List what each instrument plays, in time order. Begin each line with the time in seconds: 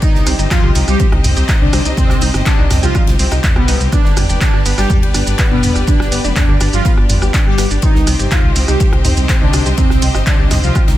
Already playing: analog synth pad G4
0.02 analog synth pad C3 C4 D#4, digital synth lead D#3, analog polysynth D#4, synth arpeggio sound D#4 D#5, string section G4, kick, ride, shaker
0.15 detuned saw bass C2, string section C5, snare
0.26 detuned saw bass C2, synth arpeggio sound C4 C5, cross-stick, open hi-hat, ride, shaker
0.39 detuned saw bass G1, synth arpeggio sound D#4 D#5, string section D#5, shaker
0.51 digital synth lead F3, analog polysynth F4, kick, cross-stick, snare, clap, mid tom, ride, shaker
0.63 detuned saw bass C2, synth arpeggio sound G4 G5
0.75 detuned saw bass C2, synth arpeggio sound D#4 D#5, open hi-hat, ride, shaker
0.88 detuned saw bass C2, digital synth lead G3, analog polysynth G4, cross-stick, shaker
1.00 synth arpeggio sound C4 C5, kick, ride, shaker
1.12 detuned saw bass C2, synth arpeggio sound D#4 D#5, cross-stick, ride
1.24 detuned saw bass C2, mid tom, open hi-hat, ride, shaker
1.36 detuned saw bass C2, synth arpeggio sound G4 G5, ride, shaker
1.49 synth arpeggio sound D#4 D#5, kick, cross-stick, snare, clap, ride, shaker
1.61 detuned saw bass C2, digital synth lead D3, analog polysynth D4
1.73 detuned saw bass C2, synth arpeggio sound C4 C5, cross-stick, open hi-hat, ride, shaker
1.85 detuned saw bass C2, synth arpeggio sound D#4 D#5, shaker
1.97 digital synth lead C3, analog polysynth C4, kick, mid tom, ride, shaker
2.10 detuned saw bass C2, synth arpeggio sound G4 G5, cross-stick, snare
2.21 detuned saw bass C2, synth arpeggio sound D#4 D#5, open hi-hat, ride, shaker
2.34 detuned saw bass G1, cross-stick, snare, shaker
2.46 digital synth lead D3, synth arpeggio sound C4 C5, analog polysynth D4, kick, snare, clap, ride, shaker
2.58 detuned saw bass C2, synth arpeggio sound D#4 D#5
2.70 detuned saw bass C2, cross-stick, snare, mid tom, open hi-hat, ride, shaker
2.83 detuned saw bass C2, digital synth lead F3, analog polysynth F4, synth arpeggio sound G4 G5, shaker
2.95 synth arpeggio sound D#4 D#5, kick, cross-stick, ride, shaker
3.07 detuned saw bass C2, snare, ride
3.19 detuned saw bass C2, synth arpeggio sound C4 C5, open hi-hat, shaker
3.32 detuned saw bass C2, synth arpeggio sound D#4 D#5, cross-stick, ride, shaker
3.43 kick, snare, clap, mid tom, ride, shaker
3.56 detuned saw bass C2, digital synth lead B2, analog polysynth B3, synth arpeggio sound G4 G5, cross-stick
3.68 detuned saw bass C2, synth arpeggio sound D#4 D#5, open hi-hat, ride, shaker
3.80 detuned saw bass C2, shaker
3.92 digital synth lead D3, analog synth pad B3 D4 G4, synth arpeggio sound B3 B4, analog polysynth D4, kick, cross-stick, ride, shaker
4.05 detuned saw bass G1, synth arpeggio sound D4 D5, string section B4, snare
4.17 detuned saw bass G1, cross-stick, mid tom, open hi-hat, ride, shaker
4.22 string section D5
4.29 detuned saw bass F1, synth arpeggio sound G4 G5, shaker
4.41 digital synth lead D3, synth arpeggio sound D4 D5, analog polysynth D4, kick, snare, clap, ride, shaker
4.54 detuned saw bass G1, cross-stick
4.66 detuned saw bass G1, synth arpeggio sound B3 B4, open hi-hat, ride, shaker
4.78 detuned saw bass G1, digital synth lead G3, synth arpeggio sound D4 D5, analog polysynth G4, cross-stick, snare, shaker
4.90 kick, mid tom, ride, shaker
5.02 detuned saw bass G1, synth arpeggio sound G4 G5, ride
5.14 detuned saw bass G1, synth arpeggio sound D4 D5, cross-stick, snare, open hi-hat, shaker
5.27 detuned saw bass G1, ride, shaker
5.38 synth arpeggio sound B3 B4, kick, cross-stick, snare, clap, ride, shaker
5.51 detuned saw bass G1, digital synth lead B2, analog polysynth B3, synth arpeggio sound D4 D5
5.63 detuned saw bass G1, mid tom, open hi-hat, ride, shaker
5.76 detuned saw bass G1, synth arpeggio sound G4 G5, cross-stick, shaker
5.88 digital synth lead D3, analog polysynth D4, synth arpeggio sound D4 D5, kick, ride, shaker
6.00 detuned saw bass G1, cross-stick, snare
6.12 detuned saw bass G1, synth arpeggio sound B3 B4, open hi-hat, ride, shaker
6.24 detuned saw bass F1, synth arpeggio sound D4 D5, shaker
6.36 digital synth lead D3, analog polysynth D4, kick, cross-stick, snare, clap, mid tom, ride, shaker
6.49 detuned saw bass G1, synth arpeggio sound G4 G5
6.60 detuned saw bass G1, synth arpeggio sound D4 D5, cross-stick, open hi-hat, ride, shaker
6.73 detuned saw bass G1, digital synth lead F3, analog polysynth F4, shaker
6.85 synth arpeggio sound B3 B4, kick, ride, shaker
6.97 detuned saw bass G1, synth arpeggio sound D4 D5, cross-stick
7.09 detuned saw bass G1, mid tom, open hi-hat, ride, shaker
7.22 detuned saw bass G1, synth arpeggio sound G4 G5, cross-stick, shaker
7.34 synth arpeggio sound D4 D5, kick, snare, clap, ride, shaker
7.46 detuned saw bass G1, digital synth lead G3, analog polysynth G4
7.58 detuned saw bass G1, synth arpeggio sound B3 B4, cross-stick, snare, open hi-hat, ride, shaker
7.71 detuned saw bass G1, synth arpeggio sound D4 D5, shaker
7.82 analog synth pad C3 C4 D#4 G4, digital synth lead D#3, synth arpeggio sound C4 C5, analog polysynth D#4, kick, ride, shaker
7.95 detuned saw bass C2, synth arpeggio sound D#4 D#5, string section G5, snare
8.03 string section C5
8.07 detuned saw bass C2, cross-stick, open hi-hat, ride, shaker
8.19 detuned saw bass G1, synth arpeggio sound G4 G5, shaker
8.31 digital synth lead F3, synth arpeggio sound D#4 D#5, analog polysynth F4, kick, cross-stick, snare, clap, mid tom, ride, shaker
8.41 detuned saw bass C2, string section D#5
8.56 detuned saw bass C2, synth arpeggio sound C4 C5, open hi-hat, ride, shaker
8.68 detuned saw bass C2, digital synth lead G3, synth arpeggio sound D#4 D#5, analog polysynth G4, cross-stick, shaker
8.80 kick, ride, shaker
8.93 detuned saw bass C2, synth arpeggio sound G4 G5, cross-stick, ride
9.05 detuned saw bass C2, synth arpeggio sound D#4 D#5, mid tom, open hi-hat, ride, shaker
9.17 detuned saw bass C2, ride, shaker
9.29 synth arpeggio sound C4 C5, kick, cross-stick, snare, clap, ride, shaker
9.41 detuned saw bass C2, digital synth lead D3, analog polysynth D4, synth arpeggio sound D#4 D#5
9.53 detuned saw bass C2, cross-stick, open hi-hat, ride, shaker
9.66 detuned saw bass C2, synth arpeggio sound G4 G5, shaker
9.78 digital synth lead C3, analog polysynth C4, synth arpeggio sound D#4 D#5, kick, mid tom, ride, shaker
9.90 detuned saw bass C2, cross-stick, snare
10.02 detuned saw bass C2, synth arpeggio sound C4 C5, open hi-hat, ride, shaker
10.14 detuned saw bass G1, synth arpeggio sound D#4 D#5, cross-stick, snare, shaker
10.27 digital synth lead D3, analog polysynth D4, kick, snare, clap, ride, shaker
10.39 detuned saw bass C2, synth arpeggio sound G4 G5
10.51 detuned saw bass C2, synth arpeggio sound D#4 D#5, cross-stick, snare, mid tom, open hi-hat, ride, shaker
10.63 detuned saw bass C2, digital synth lead F3, analog polysynth F4, shaker
10.75 synth arpeggio sound C4 C5, kick, cross-stick, ride, shaker
10.88 detuned saw bass C2, synth arpeggio sound D#4 D#5, snare, ride